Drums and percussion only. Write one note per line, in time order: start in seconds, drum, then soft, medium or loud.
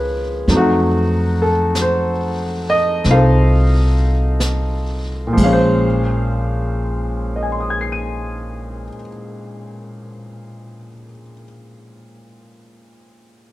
0.48 brush sweep soft
0.48 snare soft
1.75 brush sweep soft
1.75 snare soft
1.75 hi-hat pedal soft
3.04 brush sweep soft
3.04 snare soft
4.40 brush sweep soft
4.40 snare soft
4.40 hi-hat pedal soft
5.37 kick soft
5.37 crash soft